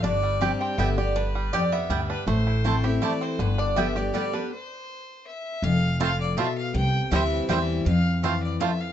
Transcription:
<<
  \new Staff \with { instrumentName = "Fiddle" } { \time 3/4 \key g \mixolydian \tempo 4 = 161 d''4. g''8 e''8 d''8 | b'4 d''8 e''4 b'8 | c''4. e''8 d''8 c''8 | b'8 d''8 e''8 d''8 d''8 b'8 |
c''2 e''4 | f''4 f''8 d''8 e''8 f''8 | g''4 e''4 e''4 | f''4 f''8 d''8 e''8 f''8 | }
  \new Staff \with { instrumentName = "Resonator guitar played with a steel bar" } { \time 3/4 \key g \mixolydian d''4. g''8 e''8 d''8 | b'4 d''8 e''4 b'8 | c''4. e''8 d''8 c''8 | b'8 d''8 e''8 d''8 d''8 b'8 |
r2. | r2. | r2. | r2. | }
  \new Staff \with { instrumentName = "Mandolin" } { \time 3/4 \key g \mixolydian r4 <c' g' d'' g''>16 r8. <b g' d'' g''>16 r8. | r4 <b g' d'' g''>16 r8. <b g' d'' g''>16 r8. | r4 <a e' c'' a''>16 r8. <a e' c'' a''>16 r8. | r4 <b g' d'' g''>16 r8. <b g' d'' g''>16 r8. |
r2. | r4 <c' f' c'' a''>16 r8. <c' f' c'' a''>16 r8. | r4 <c' e' c'' g''>16 r8. <c' e' c'' g''>16 r8. | r4 <c' f' c'' a''>16 r8. <c' f' c'' a''>16 r8. | }
  \new Staff \with { instrumentName = "Five-string banjo" } { \time 3/4 \key g \mixolydian d'8 g8 g'8 c'8 b8 g'8 | d'8 g8 g'8 b8 g8 d'8 | a8 e'8 a8 g'8 e'8 c'8 | d8 d'8 b8 g'8 g8 d'8 |
r2. | r4 <a c' f'>8 r8 <a c' f'>8 r8 | r4 <g c' e'>8 r8 <g c' e'>8 r8 | r4 <a c' f'>8 r8 <a c' f'>8 r8 | }
  \new Staff \with { instrumentName = "Steel-string acoustic guitar" } { \time 3/4 \key g \mixolydian << { r4 <g c' d' g'>4 <d g b g'>8 <b g'>8 | r2. | r4 <e a c' e'>8 <c' e'>8 <e a c' e'>4 | r4 <d g b g'>8 <b g'>8 <d g b g'>8 <b g'>8 |
r2. | r2. | r4 <e g c' e'>4 <e g c' e'>4 | r2. | } \\ { g,2 r4 | g,4 f,4 g,4 | a,2 r4 | g,2 r4 |
r2. | f,4 a,4 b,4 | c2 r4 | f,4 e4 f,4 | } >> }
  \new Staff \with { instrumentName = "Upright bass" } { \clef bass \time 3/4 \key g \mixolydian g,,2 g,,4~ | g,,2 d,4 | a,,2. | g,,2. |
r2. | f,,2. | c,4 d,4 e,4 | f,2. | }
>>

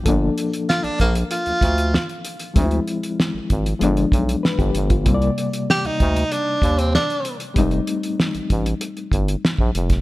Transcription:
<<
  \new Staff \with { instrumentName = "Tenor saxophone" } { \time 4/4 \key g \minor \tempo 4 = 96 r4 f'16 d'16 bes8 f'4. r8 | r1 | r4 g'16 ees'8. d'8. c'16 d'8. r16 | r1 | }
  \new Staff \with { instrumentName = "Reed electric piano" } { \time 4/4 \key g \minor r1 | r2. b'16 g'8 f'16~ | f'16 r2. r8. | r1 | }
  \new Staff \with { instrumentName = "Reed electric piano" } { \time 4/4 \key g \minor <f bes d' a'>1 | <f aes c' d' e'>2 <f aes b d'>2 | <c g bes c' d''>1 | <g aes c' ees'>1 | }
  \new Staff \with { instrumentName = "FM bass" } { \clef bass \time 4/4 \key g \minor g,,8 r8. bes,,16 bes,,8 r16 d,16 d,8. r8. | d,8 r8. aes,,16 aes,,8 g,,8 b,,8 r16 g,,16 g,,8 | c,8 r8. d,16 d,8 r8 ees,8. r8. | f,,8 r8. a,,16 a,,8 r8 g,,8 r16 bes,,16 f,,8 | }
  \new DrumStaff \with { instrumentName = "Drums" } \drummode { \time 4/4 <hh bd>8 hh16 hh16 sn16 hh16 <hh bd>16 hh16 hh16 hh16 <hh bd sn>16 hh16 sn16 hh16 hh16 hh16 | <hh bd>16 hh16 hh16 hh16 sn8 <hh bd>16 hh16 hh16 hh16 <hh bd>16 hh16 sn16 <hh bd>16 hh16 <hh bd>16 | <hh bd>16 hh16 hh16 hh16 sn16 hh16 <hh bd>16 hh16 hh8 <hh bd>16 hh16 sn16 hh16 hh16 hh16 | <hh bd>16 hh16 hh16 hh16 sn16 hh16 <hh bd>16 hh16 hh16 hh16 <hh bd>16 hh16 sn16 bd16 hh16 <hh bd sn>16 | }
>>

